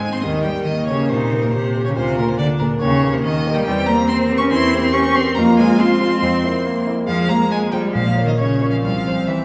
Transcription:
Already playing: G#2 G#3 C4 D#4 G#4 G#5
0.02 C4 D#4 G#4
0.12 C4 C6
0.21 D#2 D#3 G3 D#5
0.43 G3 A#3 G4 G5
0.47 A#4
0.65 D#3 A#3 D#5
0.86 C#3 C#5
0.91 A#3 G4 A#4
1.09 A#2 C3 D#4 C5
1.33 A#3 G4 A#4
1.42 A#2 A#4
1.51 C3 C5
1.55 G4
1.76 A#3 G4 A#4
1.84 C#3 C#5
1.96 D2 C3 F4 C5
2.17 A#2 A#3 G#4 A#4
2.28 C3 C5
2.38 D3 D4 D5
2.59 A#2 A#3 G#4 A#4
2.79 D#2 C#3 C#5
2.83 A#3
3.03 A#3 G4 A#4
3.13 C3 C5
3.23 D#3 D#5
3.46 A#3 G4 A#4
3.55 G3 G5
3.64 E2 G3 C4 G5
3.86 A#3 G4 C5 A#5
4.09 C4 C6
4.31 A#3 G4 C5
4.38 C#4 C#6
4.51 E2 C4 E4 C6
4.73 A#3 G4 C5
4.80 C4 C6
4.93 C#4 G4 C#6
5.15 A#3 C4 G4 C5 C6
5.35 F2 A#3 F4 A#5
5.57 G#3 F4 C5 G#5
5.79 C4 C6
6.01 G#3 F4 C5
6.22 F2 C4
6.43 A#3 E4 C5
6.66 A#3
6.87 A#3 E4 C5
7.08 F2 F3 G#3 F5
7.28 G#3 A#3 F4 C5 A#5
7.51 G#3 G#5
7.72 G3 G#3 F4 C5 G5
7.92 A#1 F3 A#3 F5
8.15 A#3 F4 C#5
8.25 D#3 D#5
8.37 C#3 C#4 C#5
8.60 A#3 F4 C#5
8.70 F3 F5
8.82 C2 F3 C4 F5
9.07 G3 C4 C5
9.28 E3 E5

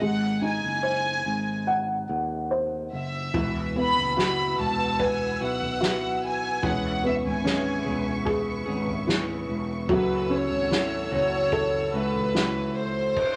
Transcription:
0.01 G#1 G#3 F#5
0.42 D#4 G#5
0.64 F#1
0.83 C5
1.26 G#1
1.67 F#5
2.09 D#2
2.51 C5
2.93 F#1 E5
3.34 E1 E3 B3 E4 F#4 B4 F#5 E6, kick, floor tom
3.76 B3 B5
3.97 F#1, floor tom
4.17 E3 B3 E4 F#4 B5, snare
4.58 E1 B3 E4 F#4 A5, floor tom
4.99 B4 G#5, kick, floor tom
5.41 B1 B3 E4 F#4 F#5
5.61 floor tom
5.81 E3 B3 E4 F#4, snare
6.26 G#5
6.62 E1 E3 B3 C#4 G#4 B4 E5 F#5 C#6, kick, floor tom
7.04 B3 E5
7.25 G#1 G#5, floor tom
7.44 E3 B3 C#4 G#4, snare
7.85 E1 B3 C#4 G#4, floor tom
8.25 G#4, kick, floor tom
8.66 G#1 B3 C#4 G#4
8.87 floor tom
9.07 E3 B3 C#4 E4 G#4, snare
9.49 E1
9.88 F#1 F#2 C#3 E3 F#3 A3 C#4 F#4 A4 B4 F#5 E6, kick, floor tom
10.30 C#4 C#5
10.50 G#1, floor tom
10.70 E3 A3 C#4 E4 F#4, snare
11.11 F#1 E3 A3 C#4 F#4 C#5, floor tom
11.52 A4, kick, floor tom
11.93 C#2 E3 A3 C#4 F#4 B4
12.13 floor tom
12.34 E3 A3 C#4 E4 F#4, snare
12.78 C5
13.17 kick, crash

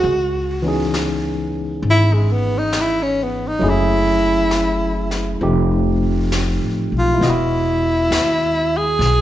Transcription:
Already playing: F#4 G#4
0.04 C#2, brush sweep
0.62 E3 B3 C#4 D#4
0.68 G#4
0.94 snare, hi-hat pedal
1.82 G#1, brush sweep
1.90 E4
2.14 G#3
2.32 B3
2.58 D#4
2.73 snare, hi-hat pedal
2.81 E4
3.03 C#4
3.23 B3
3.48 D#4
3.59 F#1 F#3 A3 C#4 E4, brush sweep
3.64 G#4
3.69 E4
4.51 snare, hi-hat pedal
5.11 snare
5.41 F1 F3 A3 C4 D#4 G4, brush sweep
6.32 snare, hi-hat pedal
6.61 A1
6.92 B1
6.98 F4
7.14 G#3 E4
7.20 E1 B3 D#5, brush sweep, snare
7.26 F#4
7.30 E4
8.10 D#2, snare, hi-hat pedal
8.77 G#4
8.99 B1, brush sweep, snare

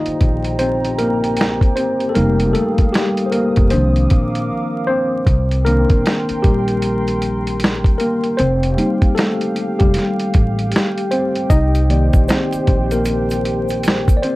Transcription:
Already playing: D#3 A#3 D#4 F4 G4 C5 D5 D#5 F5 G5 A#5
0.06 muted upright bass stroke, closed hi-hat
0.21 A#1, kick, closed hi-hat
0.44 closed hi-hat
0.59 C4 C5, closed hi-hat
0.85 closed hi-hat
0.98 A#3 A#4, closed hi-hat
1.24 closed hi-hat
1.37 closed hi-hat
1.41 snare
1.61 kick, closed hi-hat
1.76 C4 C5, closed hi-hat
2.00 closed hi-hat
2.09 A4
2.15 F1 G3 A#3 D#4 A#4 F5 D#6, closed hi-hat
2.40 closed hi-hat
2.53 A3 A4, closed hi-hat
2.78 kick, closed hi-hat
2.92 G3 G4, snare, closed hi-hat
3.17 closed hi-hat
3.26 C5
3.31 A#3 A#4, closed hi-hat
3.56 F1, kick, closed hi-hat
3.70 C2 D#3 F3 A#3 C4 D4 A#4 C5 F5 D6, closed hi-hat
3.96 closed hi-hat
4.10 A#1, kick, closed hi-hat
4.35 closed hi-hat
4.87 C4 C5
5.27 C2 A#4 G5 C6, kick, closed hi-hat
5.51 closed hi-hat
5.65 D#3 A#3 D4 A#4, closed hi-hat
5.90 A#1, kick, closed hi-hat
6.06 snare, closed hi-hat
6.29 muted upright bass stroke, closed hi-hat
6.42 A#1 G3 G4, kick, closed hi-hat
6.68 closed hi-hat
6.82 closed hi-hat
7.08 closed hi-hat
7.22 closed hi-hat
7.47 closed hi-hat
7.60 closed hi-hat
7.64 snare
7.84 kick, closed hi-hat
7.98 A#3 A#4, closed hi-hat
8.24 closed hi-hat
8.37 F1 C4 G4 C5 F5 G5, closed hi-hat
8.63 closed hi-hat
8.77 G3 A#3 D#4, closed hi-hat
9.02 kick, closed hi-hat
9.15 A3 A4, snare, closed hi-hat
9.41 closed hi-hat
9.56 closed hi-hat
9.79 F1 G3 G4, kick, closed hi-hat
9.94 snare, closed hi-hat
10.19 closed hi-hat
10.34 A1, kick, closed hi-hat
10.59 closed hi-hat
10.72 closed hi-hat
10.76 snare
10.98 closed hi-hat
11.11 C4 C5, closed hi-hat
11.35 closed hi-hat
11.50 C2 D#4 C5 D#5, kick, closed hi-hat, shaker
11.75 closed hi-hat, shaker
11.89 D#3 A#3 D5, closed hi-hat
12.13 A#1, kick, closed hi-hat, shaker
12.28 C4 C5, snare, closed hi-hat, shaker
12.53 muted upright bass stroke, closed hi-hat, shaker
12.67 A#1, kick, closed hi-hat
12.91 A#3 A#4, closed hi-hat, shaker
13.05 closed hi-hat, shaker
13.30 closed hi-hat, shaker
13.45 closed hi-hat
13.69 closed hi-hat, shaker
13.83 closed hi-hat, shaker
13.88 snare
14.08 kick, closed hi-hat, shaker
14.17 D5
14.22 C4 C5, closed hi-hat

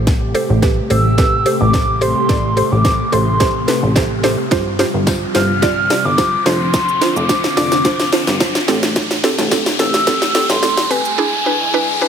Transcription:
Already playing: A1 C3 A3 G4 A4 C5, riser
0.07 kick, snare, closed hi-hat
0.34 G4 A4 C5, open hi-hat
0.50 A1
0.62 G4 A4 B4, kick, snare, closed hi-hat
0.90 A1 G4 A4 C5 E6, open hi-hat
1.18 G4 A4 B4, kick, snare, closed hi-hat
1.46 G4 A4 C5, open hi-hat
1.60 A1 D6
1.73 G4 A4 C5, kick, snare, closed hi-hat
2.01 G4 A4 C5 C6, open hi-hat
2.29 A1 G4 A4 D5, kick, snare, closed hi-hat
2.57 G4 A4 C5, open hi-hat
2.72 A1 D6
2.84 G4 A4 C5, kick, snare, closed hi-hat
3.12 A1 G4 A4 C5 C6, open hi-hat
3.40 G4 A4 C5, kick, snare, closed hi-hat
3.68 G4 A4 B4, snare, open hi-hat
3.83 A1
3.96 G4 A4 C5, kick, snare, closed hi-hat
4.23 G4 A4 C5, snare, open hi-hat
4.51 G1 G3 F4 G4 C5, kick, snare, closed hi-hat
4.79 F4 G4 C5, snare, open hi-hat
4.94 G1
5.07 F4 G4 C5, kick, snare, closed hi-hat, tambourine
5.35 G1 F4 G4 C5 F6, snare, open hi-hat
5.62 F4 G4 D5, kick, snare, closed hi-hat
5.90 F4 G4 D5, snare, open hi-hat
6.05 G1 D6
6.18 F4 G4 C5, kick, snare, closed hi-hat, tambourine
6.46 F1 D3 C4 D4 F4 C5 C6, snare, open hi-hat
6.74 kick, snare, closed hi-hat, shaker
6.89 shaker
7.01 D4 F4 C5, snare, open hi-hat, shaker
7.16 F1 D6, shaker
7.29 D4 F4 C5, kick, snare, closed hi-hat, tambourine, shaker
7.44 snare, shaker
7.57 F1 D4 F4 D5 D6, snare, open hi-hat, shaker
7.72 snare, shaker
7.85 D4 F4 C5, kick, snare, closed hi-hat, shaker
8.00 snare, shaker
8.12 D4 F4 C5, snare, open hi-hat, shaker
8.27 G1, snare, shaker
8.40 D4 F4 C5, kick, snare, closed hi-hat, tambourine, shaker
8.55 snare, shaker
8.68 A1 C3 A3 C4 G4 A4, snare, open hi-hat, shaker
8.83 snare, shaker
8.96 kick, snare, closed hi-hat, shaker
9.11 snare, shaker
9.24 C4 G4 A4, snare, open hi-hat, shaker
9.38 A1, snare, shaker
9.51 C4 G4 A4, kick, snare, closed hi-hat, tambourine, shaker
9.66 snare, shaker
9.79 A1 C4 G4 A4 E6, snare, open hi-hat, shaker
9.94 snare, shaker
10.07 C4 G4 A4, kick, snare, closed hi-hat, shaker
10.22 snare, shaker
10.35 C4 G4 A4, snare, open hi-hat, shaker
10.50 A1 C6, snare, shaker
10.62 C4 G4 A4, snare, closed hi-hat, tambourine, shaker
10.77 snare, shaker
10.90 C4 G4 B4 G#5, open hi-hat, shaker
11.05 shaker
11.18 D3 G#3 D4 E4 G#4
11.46 D4 E4 B4
11.74 D4 E4 B4
12.01 D4 E4 B4

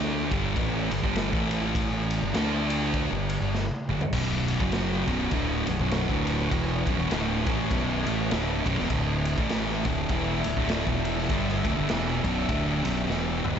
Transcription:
Already playing: D2 D3 A3 D4
0.32 G1 G2 D3 G3, kick, ride
0.56 A1 A2 E3 A3, kick, ride
0.91 G1 G2 D3, ride
1.03 G1 G2 D3 G3, kick
1.16 snare, ride
1.33 A1 A2 E3 A3, kick
1.51 ride
1.75 kick, ride
2.10 ride
2.22 G1 G2 D3
2.34 D2 D3 A3 D4, snare, ride
2.70 ride
2.94 kick, ride
3.11 G1 G2 D3
3.29 ride
3.41 G1 G2 D3
3.55 snare
3.71 high tom
3.89 G1 G2 D3, mid tom
4.01 muted distorted electric guitar stroke, floor tom
4.13 B0 B1 F#2 B2 B3 F#4 C#5, kick, crash
4.48 ride
4.60 F#1 F#2 C#3 F#3, kick
4.72 snare, ride
4.91 snare
5.07 B0 B1 F#2 B2, kick, ride
5.31 D1 D2 A2 D3, kick, ride
5.67 B0 B1 F#2, ride
5.79 B0 B1 F#2 B2, kick
5.91 snare, ride
6.09 D1 D2 A2 D3, kick
6.27 ride
6.51 E1 E2 B2 E3 E4, kick, ride
6.86 B0 B1 F#2, kick, ride
6.99 E1 E2 B2
7.11 D1 D2 A2 D3, snare, ride
7.46 A1 A2 E3 A3, kick, ride
7.71 B0 B1 F#2 B2, kick, ride
8.06 A1 A2 E3 A3, ride
8.30 D1 D2 A2 D3, snare, ride
8.66 B0 B1 F#2, kick, ride
8.79 E1 E2 B2, snare
8.90 D1 D2 A2 D3 D4 A4 E5, kick, ride
9.25 ride
9.38 A1 A2 E3 A3, kick
9.49 snare, ride
9.69 snare
9.85 D1 D2 A2 D3, kick, ride
10.09 E1 E2 B2 E3, kick, ride
10.44 D1 D2 A2, ride
10.57 D1 D2 A2 D3, kick
10.69 snare, ride
10.87 E1 E2 B2 E3, kick
11.05 ride
11.18 snare
11.29 G1 G2 D3 G3 G4, kick, ride
11.49 snare
11.65 D1 D2 A2, kick, ride
11.77 G1 G2 D3
11.89 E1 E2 B2 E3, snare, ride
12.08 snare
12.24 B0 B1 F#2 B2, kick, ride
12.49 D1 D2 A2 D3, kick, ride
12.84 B0 B1 F#2 B2, ride
13.09 E1 E2 B2 E3, snare
13.44 D1 D2 A2, mid tom

